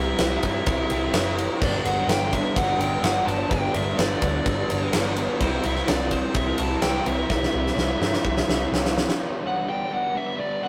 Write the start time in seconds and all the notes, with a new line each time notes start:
Already playing: C2 C3 G3 E4 G4 E5
0.00 C4
0.18 C2 G3 C4 E4, snare, ride
0.23 G4
0.43 G2 C3 G3 E4, kick, ride
0.66 C2, kick, ride
0.90 C2 C4 E4 G4, ride
1.13 F#1 C3 G3 C4 E4 G4, snare, ride
1.37 C4 E4 G4, ride
1.60 G1 G2 D3 G3 B3 D4 D5, kick, crash
1.84 G1 G3 B3 D4 F#5, ride
2.07 G1 D3 G3 B3 G5, snare, ride
2.11 D4
2.32 G2 D3 B3 D4 E5, kick, ride
2.56 G1 F#5, kick, ride
2.78 G1 G3 B3 D4 G5, ride
3.02 G1 G2 D3 G3 B3 D4 F#5, snare, ride
3.27 G1 G3 B3 D4 A5, ride
3.50 G1 G2 D3 G3 B3 D4 G5, kick, ride
3.73 G1 G3 B3 D4 E5, ride
3.96 G1 D3 G3 B3 D4 D5, snare, ride
4.21 D2 G2 D3 B3 D4, kick, ride
4.46 G1, kick, ride
4.68 G1 G3 B3 D4, ride
4.92 G1 G2 D3 G3 B3 D4, snare, ride
5.15 G3 B3 D4, ride
5.40 C2 C3 G3 C4 E4 C5, kick, ride
5.63 C2 G3 C4 E4 E5, ride
5.76 snare
5.87 C2 C3 G3 C4 E4 D5, snare, ride
6.11 G3 E4 C5, kick, ride
6.15 C3
6.34 C2 E5, kick, ride
6.58 C2 C4 E4 A5, ride
6.62 G3
6.82 C2 C3 G3 C4 E4 G5, snare, ride
7.05 C2 G3 C4 E4 E5, ride
7.29 C2 C3 G3 C4 E4, kick, snare
7.43 snare
7.52 C2 G3 C4 E4
7.67 snare
7.76 C2 C3 G3 C4, snare
7.81 E4
8.00 G2 G3 E4, snare
8.05 C3
8.14 snare
8.24 C2, kick
8.37 snare
8.48 C2 G3 C4 E4, snare
8.72 C2 C3 G3 C4 E4, snare
8.85 snare
8.96 G3 C4 E4, snare
9.09 snare
9.20 G2 D3 G3 B3 D4
9.44 G3 B3 D4 F#5
9.66 D3 G3 B3 G5
9.70 D4
9.90 G3 B3 D4 F#5
10.13 G2 D3 G3 B3 D4 E5
10.37 G3 B3 D4 D5
10.61 D3 G3 B3 D4 F#5